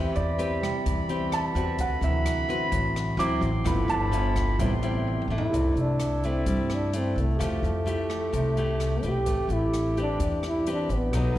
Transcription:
Already playing: E2 E3 C4 G4 B4 E5 B5
0.16 E2 D5, closed hi-hat
0.38 C4 G4 B4, closed hi-hat
0.61 C3 G3, cross-stick, closed hi-hat
0.86 E2 E3, kick, closed hi-hat
1.09 C4 G4 B4, closed hi-hat
1.32 A5, cross-stick, closed hi-hat
1.55 E2 C4 F#4 B4, closed hi-hat
1.77 D2 D3 F#4 E5 F#5 B5, kick, closed hi-hat
2.01 D2 C3 E3 F#3 E5, closed hi-hat
2.26 cross-stick, closed hi-hat
2.49 C4 F#4 B4, closed hi-hat
2.72 A1 A2, kick, closed hi-hat
2.96 cross-stick, closed hi-hat
3.17 D2 E3 F#3 C4 E4 C6 D6, closed hi-hat
3.41 A1, closed hi-hat
3.64 G1 G2 F3 A3 B3 E4 A4 E5 G5 B5, kick, cross-stick, closed hi-hat
3.88 G1 A5, closed hi-hat
4.11 F3 B3 E4, closed hi-hat
4.36 kick, cross-stick, closed hi-hat
4.58 A1 A2 C3 G3 B3 C4 E4 G5 C6, kick, closed hi-hat
4.83 G3 C4 E4, closed hi-hat
5.07 high tom
5.22 mid tom
5.28 A1 A3 D4 E4
5.36 E4, floor tom
5.50 C2 C3 E4 G4 A4, kick
5.54 D3 A3 D5 E5, closed hi-hat
5.76 C2, closed hi-hat
5.81 D4
6.00 cross-stick, closed hi-hat
6.24 A3 D4 E4, closed hi-hat
6.28 C4
6.46 G2 G3, kick, closed hi-hat
6.70 cross-stick, closed hi-hat
6.74 D4
6.93 A3 D4 E4, closed hi-hat
6.98 C4
7.16 C2, closed hi-hat
7.21 A3
7.36 F2 F3 A3 E4 G4 A4 C5, kick
7.41 E5, cross-stick, closed hi-hat
7.63 F2, closed hi-hat
7.86 A3 E4 G4, closed hi-hat
8.10 cross-stick, closed hi-hat
8.32 C2 C3, kick, closed hi-hat
8.57 A3 E4 G4, closed hi-hat
8.80 cross-stick, closed hi-hat
9.03 B1 C4 G4 B4, closed hi-hat
9.07 G4
9.24 A1 C3 A3 G4 B4, kick, closed hi-hat
9.30 E5
9.49 A1, closed hi-hat
9.53 E4
9.73 cross-stick, closed hi-hat
9.97 C4 G4 B4, closed hi-hat
10.01 D4
10.20 E2 E3, kick, closed hi-hat
10.43 cross-stick, closed hi-hat
10.48 E4
10.67 C4 G4 B4, closed hi-hat
10.72 D4
10.89 A1, closed hi-hat
10.95 B3
11.11 B1 B2 F#3 A3 D#4 F#4 A4 C#5, kick, cross-stick, closed hi-hat
11.17 D#5

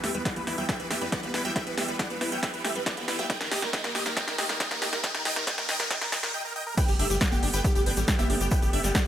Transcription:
Already playing: E3 G3 B3, riser
0.03 E2 A3 G4 E5, snare, open hi-hat
0.14 E2 G3 B4, closed hi-hat
0.25 E3 D5 F#5, kick, snare, closed hi-hat
0.36 E2 E3 B4, closed hi-hat, high conga
0.47 E2 E4 B4, snare, open hi-hat
0.58 E2 F#3 E5 G5, closed hi-hat
0.69 E3 E5 G5, kick, snare, closed hi-hat
0.80 E2 E3 B4, closed hi-hat
0.90 E2 A3 G4 E5, snare, open hi-hat
1.01 F#2 G3 B4, closed hi-hat
1.12 E3 D5 F#5, kick, snare, closed hi-hat
1.23 E2 E3 B4, closed hi-hat, high conga
1.34 E2 E4 B4, snare, open hi-hat
1.45 E2 F#3 E5 G5, closed hi-hat
1.56 E3 E5 G5, kick, snare, closed hi-hat
1.67 E2 E3 B4, closed hi-hat
1.78 E2 A3 G4 E5, snare, open hi-hat
1.88 E2 G3 B4, closed hi-hat
1.99 E3 D5 F#5, kick, snare, closed hi-hat
2.10 E2 E3 B4, closed hi-hat, high conga
2.21 E2 E4 B4, snare, open hi-hat
2.32 E2 F#3 E5 G5, closed hi-hat
2.43 E3 E5 G5, kick, snare, closed hi-hat
2.54 E2 E3 B4, closed hi-hat
2.65 E2 A3 G4 E5, snare, open hi-hat
2.75 F#2 G3 B4, closed hi-hat
2.86 E3 D5 F#5, kick, snare, closed hi-hat
2.97 E2 E3 B4, closed hi-hat, high conga
3.08 E2 E4 B4, snare, open hi-hat
3.19 E2 F#3 E5 G5, closed hi-hat, high conga
3.30 D#3 A#3 D#5 G5, kick, snare, closed hi-hat
3.41 D#2 D#3 A#4, snare, closed hi-hat
3.51 D#2 A3 G4 D#5, snare, open hi-hat
3.62 D#2 G3 A#4, snare, closed hi-hat
3.73 D#3 D#5 G5, kick, snare, closed hi-hat
3.84 D#2 D#3 A#4, snare, closed hi-hat, high conga
3.95 D#2 A3 G4 D#5, snare, open hi-hat
4.06 D#2 G3 A#4, snare, closed hi-hat
4.17 D#3 D#5 G5, kick, snare, closed hi-hat
4.27 D#2 D#3 A#4, snare, closed hi-hat
4.38 D#2 A3 G4 D#5, snare, open hi-hat
4.49 F2 G3 A#4, snare, closed hi-hat
4.60 D#3 D#5 G5, kick, snare, closed hi-hat
4.71 D#2 D#3 A#4, snare, closed hi-hat, high conga
4.82 D#2 A3 G4 D#5, snare, open hi-hat
4.93 D#2 G3 A#4, snare, closed hi-hat
5.04 D#3 D#5 G5, kick, snare, closed hi-hat
5.14 D#2 D#3 A#4, snare, closed hi-hat
5.25 D#2 D#3 D#5 G5, snare, open hi-hat
5.36 D#2 D#3 A#4, snare, closed hi-hat
5.47 D#5 G5, kick, snare, closed hi-hat
5.58 D#2 D#3 A#4, snare, closed hi-hat, high conga
5.69 D#2 D#3 D#5 G5, snare, open hi-hat
5.80 D#2 D#3 A#4, snare, closed hi-hat
5.90 D#5 G5, kick, snare, closed hi-hat
6.01 D#2 D#3 A#4, snare, closed hi-hat
6.12 D#2 D#3 D#5 G5, kick, snare, open hi-hat
6.23 F2 D#3 A#4, snare, closed hi-hat
6.34 D#5 G5
6.45 A#4
6.56 D#5 G5
6.67 A#4
6.78 G3 A3 B3 B4 G5, kick, closed hi-hat, crash, shaker
6.88 G1 G4, closed hi-hat, shaker
6.99 G1 D4 G4 E5, open hi-hat
7.10 G1 G3 G4, closed hi-hat, shaker
7.21 G3 D5 F#5, kick, snare, closed hi-hat, shaker
7.32 G1 G4, closed hi-hat, high conga, shaker
7.43 G1 D4 G4, open hi-hat
7.53 G1 G4 B4 G5, closed hi-hat, shaker
7.64 G4, kick, closed hi-hat, shaker
7.75 G1 G4, closed hi-hat, shaker
7.86 G1 D4 B4 G5, open hi-hat
7.97 A1 G3 G4, closed hi-hat, shaker
8.08 G4, kick, snare, closed hi-hat, shaker
8.19 G1 G4 E5, snare, closed hi-hat, high conga, shaker
8.30 G1 D4 G4, open hi-hat
8.41 G1 G4, closed hi-hat, shaker
8.51 G3 B4 G5, kick, closed hi-hat, shaker
8.62 G1 G4, closed hi-hat, shaker
8.73 G1 D4 G4 E5, open hi-hat
8.84 G1 G3 G4, snare, closed hi-hat, shaker
8.95 G3 D5 F#5, kick, snare, closed hi-hat, shaker

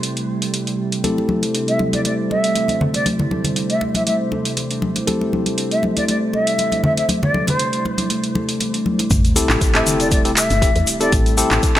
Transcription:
Already playing: C3 G3 A3 C4 E4 G4 A4
0.03 closed hi-hat
0.17 closed hi-hat
0.42 closed hi-hat
0.54 closed hi-hat
0.67 closed hi-hat
0.92 closed hi-hat
1.04 A3 C4 E4 G4 A4 C5, closed hi-hat, high conga
1.18 muted conga
1.29 A4, high conga
1.43 closed hi-hat, muted conga
1.54 D4, closed hi-hat
1.68 A3 E5, closed hi-hat
1.79 muted conga, high conga
1.93 E4 D5, closed hi-hat, high conga
2.05 A3 D5, closed hi-hat, muted conga
2.30 A4 E5, muted conga
2.44 closed hi-hat
2.55 E3, closed hi-hat, muted conga
2.68 D4, closed hi-hat, high conga
2.81 low conga
2.94 E4 D5, closed hi-hat, muted conga
3.06 A3, closed hi-hat, high conga
3.19 muted conga, low conga
3.31 A4, high conga
3.44 closed hi-hat, muted conga, low conga
3.56 D4, closed hi-hat
3.70 A3 E5, closed hi-hat
3.81 muted conga, high conga
3.95 E4 E5, closed hi-hat, high conga
4.07 A3 E5, closed hi-hat, muted conga
4.32 A4, muted conga, high conga
4.45 closed hi-hat
4.57 E3, closed hi-hat, muted conga
4.71 D4, closed hi-hat
4.82 high conga
4.96 E4, closed hi-hat, muted conga
5.07 A3 C4 E4 G4 A4, closed hi-hat, high conga
5.21 muted conga
5.33 A4, high conga
5.46 closed hi-hat, muted conga
5.58 D4, closed hi-hat
5.71 A3 E5, closed hi-hat
5.83 muted conga, high conga
5.97 E4 D5, closed hi-hat, high conga
6.08 A3 D5, closed hi-hat, muted conga
6.33 A4 E5, muted conga
6.47 closed hi-hat
6.58 E3, closed hi-hat, muted conga
6.72 D4, closed hi-hat, high conga
6.84 E5, low conga
6.97 E4 E5, closed hi-hat, muted conga
7.09 A3, closed hi-hat, high conga
7.23 D5, muted conga, low conga
7.34 A4, high conga
7.47 C5, closed hi-hat, muted conga, low conga
7.59 D4, closed hi-hat
7.73 A3, closed hi-hat
7.85 muted conga, high conga
7.98 E4, closed hi-hat, high conga
8.10 A3, closed hi-hat, muted conga
8.24 closed hi-hat
8.35 A4, muted conga, high conga
8.49 closed hi-hat
8.60 E3, closed hi-hat, muted conga
8.74 D4, closed hi-hat
8.86 high conga
8.99 E4, closed hi-hat, muted conga
9.10 A1 C3 G3 A3 E4 G4, kick, closed hi-hat, mid tom, sub drop, shaker
9.25 closed hi-hat, shaker
9.36 C4 E4 G4 A4, open hi-hat, shaker
9.49 A1, clap, shaker
9.61 D4, kick, closed hi-hat, shaker
9.74 A1 A3 C4 E4 G4 A4 E5, clap, closed hi-hat, shaker
9.87 open hi-hat, mid tom, shaker
10.00 E4 D5, closed hi-hat, shaker
10.11 A3 D5, kick, closed hi-hat, shaker
10.25 C4 E4 G4 A4, closed hi-hat, shaker
10.37 A4 E5, clap, open hi-hat, shaker
10.50 G1, closed hi-hat, shaker
10.62 E3 C4 E4 G4 A4, kick, closed hi-hat, shaker
10.75 E2 D4, closed hi-hat, shaker
10.87 open hi-hat, shaker
11.01 C4 E4 G4 A4 D5, closed hi-hat, shaker
11.12 A1 A3, kick, closed hi-hat, shaker
11.26 closed hi-hat, shaker
11.37 C4 E4 G4 A4, open hi-hat, shaker
11.51 A1, clap, shaker
11.63 D4, kick, closed hi-hat, shaker
11.76 A1 A3 C4 E4 G4 A4 E5

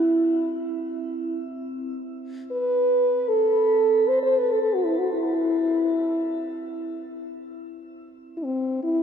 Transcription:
Already playing: C4 E4
2.51 B4
3.28 A4
4.08 C5
4.22 C5
4.38 B4
4.51 A4
4.62 A4
4.75 F#4
4.85 E4
4.99 F#4
5.13 E4
8.37 E4
8.44 C4
8.83 E4

